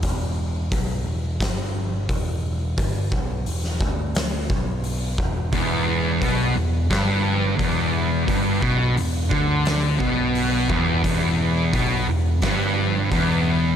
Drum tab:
HH |o---o---o---o---|o---o---o---o---|o---o---o---o---|o---o---o---o---|
SD |--------o-------|-----o--o-------|--------o-------|--------o-------|
BD |o---o---o---o---|o-o---o---o---o-|o---o---o---o---|o-o---o---o---o-|

HH |o---o---o---o---|
SD |--------o-------|
BD |o---o---o---o---|